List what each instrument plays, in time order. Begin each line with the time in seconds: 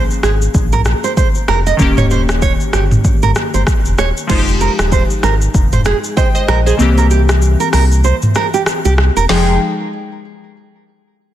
Already playing: synth keys F3 A#3 C#4 G#4
0.10 shaker
0.23 sub bass G#1, nylon-string guitar G#4, cross-stick, shaker
0.42 shaker
0.54 sub bass A#1, kick, shaker
0.72 nylon-string guitar A#4, mid tom, shaker
0.85 cross-stick, shaker
1.04 nylon-string guitar C5, shaker
1.17 nylon-string guitar C5, kick, shaker
1.35 shaker
1.48 sub bass F1, nylon-string guitar A#4, cross-stick
1.67 nylon-string guitar D#5, shaker
1.77 sub bass D#1, synth keys D#3 A#3 C#4, kick, shaker
1.82 synth keys G4
1.97 nylon-string guitar C#5, mid tom, shaker
2.10 nylon-string guitar C5, shaker
2.29 cross-stick, shaker
2.42 nylon-string guitar C#5, kick, shaker
2.60 shaker
2.73 sub bass G1, nylon-string guitar G4, cross-stick, shaker
2.91 mid tom, shaker
3.04 kick, shaker
3.22 sub bass G1, nylon-string guitar A#4, mid tom, shaker
3.35 cross-stick, shaker
3.54 sub bass G1, nylon-string guitar C5, shaker
3.67 kick, cross-stick, shaker
3.85 sub bass F1, shaker
3.98 sub bass D#1, nylon-string guitar C#5, cross-stick, shaker
4.17 shaker
4.27 sub bass F1, synth keys F3 G#3 D#4, nylon-string guitar C5, kick, crash, shaker
4.32 synth keys F4
4.39 synth keys G4
4.48 shaker
4.61 nylon-string guitar A#4, shaker
4.79 sub bass D#1, cross-stick, shaker
4.92 nylon-string guitar C5, kick, shaker
5.10 shaker
5.23 sub bass G#1, nylon-string guitar A#4, cross-stick, shaker
5.42 shaker
5.54 sub bass F1, kick, shaker
5.72 nylon-string guitar C5, mid tom, shaker
5.85 nylon-string guitar G#4, cross-stick, shaker
6.04 shaker
6.17 nylon-string guitar C5, synth keys D#5 G5, kick, shaker
6.35 synth keys C5 D#5, shaker
6.48 sub bass A#1, nylon-string guitar A#4, cross-stick
6.66 nylon-string guitar G#4, synth keys G#4 C5, shaker
6.77 sub bass C2, synth keys C#3 A#3 C4, shaker
6.82 synth keys E3 G4
6.98 nylon-string guitar A#4, shaker
7.11 nylon-string guitar G4, shaker
7.29 cross-stick, shaker
7.42 shaker
7.60 nylon-string guitar A#4, shaker
7.73 sub bass C2, nylon-string guitar A#4, cross-stick, open hi-hat, shaker
7.92 shaker
8.04 nylon-string guitar C5, shaker
8.22 mid tom, shaker
8.35 nylon-string guitar A#4, cross-stick, shaker
8.54 nylon-string guitar G4, shaker
8.66 cross-stick, shaker
8.85 sub bass C2, nylon-string guitar G4, shaker
8.98 cross-stick
9.16 sub bass E1, nylon-string guitar A#4, shaker
9.29 sub bass F1, synth keys F3 G#3 D#4 G5, nylon-string guitar G#4, snare, open hi-hat